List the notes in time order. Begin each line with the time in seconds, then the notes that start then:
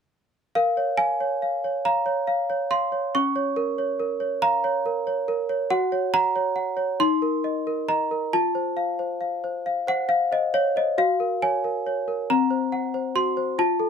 0.55 A#4 F5
0.77 C#5
0.97 F5 G#5
1.20 C#5
1.42 F5
1.64 C#5
1.85 F5 A#5
2.06 C#5
2.27 F5
2.50 C#5
2.71 F5 C6
2.92 C#5
3.15 C#4 C#6
3.36 C#5
3.56 A#4
3.78 C#5
4.00 A#4
4.20 C#5
4.42 F5 A#5
4.64 C#5
4.86 A#4
5.07 C#5
5.28 A#4
5.49 C#5
5.70 F#4 F#5
5.92 C#5
6.14 F#5 A#5
6.36 C#5
6.56 F#5
6.77 C#5
7.00 D#4 C6
7.22 A#4
7.44 D#5
7.67 A#4
7.89 D#5 A#5
8.11 A#4
8.33 F4 A5
8.55 C5
8.77 F5
8.99 C5
9.21 F5
9.44 C5
9.66 F5
9.87 C5 F#5
10.09 F5
10.32 C5 D#5
10.54 C#5 F5
10.76 C5 D#5
10.98 F#4 F5
11.20 A#4
11.42 C#5 G#5
11.64 A#4
11.86 C#5
12.08 A#4
12.30 C4 A#5
12.50 C5
12.72 F#5
12.94 C5
13.15 F#4 C6
13.37 C5
13.59 F4 A5
13.79 A4